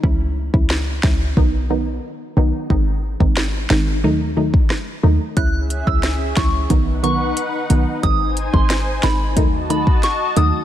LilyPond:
<<
  \new Staff \with { instrumentName = "Synth bell" } { \time 4/4 \key cis \minor \tempo 4 = 90 r1 | r1 | fis'''8 r16 e'''8 r16 cis'''8 r8 cis'''16 r4 r16 | dis'''8 r16 bis''8 r16 b''8 r8 b''16 r16 cis'''16 r16 dis'''16 r16 | }
  \new Staff \with { instrumentName = "Analog synth pad" } { \time 4/4 \key cis \minor << { r1 | r1 | <gis' e''>2 <b' fis''>2 | <bis' gis''>2 <dis'' a''>2 | } \\ { r1 | r1 | cis'2 dis'2~ | dis'2 fis'2 | } >> }
  \new Staff \with { instrumentName = "Synth pluck" } { \clef bass \time 4/4 \key cis \minor <e gis cis' e'>16 r8 <e gis cis' e'>8. <e gis cis' e'>8 <dis fis b dis'>8 <dis fis b dis'>16 r8. <dis fis b dis'>8 | <dis gis bis dis'>16 r8 <dis gis bis dis'>8. <dis gis bis dis'>8 <dis fis a dis'>8 <dis fis a dis'>16 r8. <dis fis a dis'>8 | <e gis cis' e'>16 r8 <e gis cis' e'>8. <e gis cis' e'>8 <dis fis b dis'>8 <dis fis b dis'>16 r8. <dis fis b dis'>8 | <dis gis bis dis'>16 r8 <dis gis bis dis'>8. <dis gis bis dis'>8 <dis fis a dis'>8 <dis fis a dis'>16 r8. <dis fis a dis'>8 | }
  \new Staff \with { instrumentName = "808-style bass" } { \clef bass \time 4/4 \key cis \minor cis,8. cis,8. cis,8 b,,4 r8 b,,16 r16 | gis,,8. gis,,8. gis,,8 dis,4 r8 dis,16 r16 | cis,8. cis,8. cis,8 b,,4 r8 b,,16 r16 | gis,,8. gis,,8. gis,,8 dis,4 r8 dis,16 r16 | }
  \new DrumStaff \with { instrumentName = "Drums" } \drummode { \time 4/4 bd8. bd16 <ss sn>8 <bd sn>8 bd4 r4 | bd8. bd16 <ss sn>8 sn8 r8. bd16 <ss sn>4 | <hh bd>8 hh16 bd16 <hh ss sn>8 <hh bd sn>8 <hh bd>8 hh8 hh8 hh8 | <hh bd>8 hh16 bd16 <hh ss sn>8 <hh sn>8 <hh bd>8 hh16 bd16 <hh sn>8 hh8 | }
>>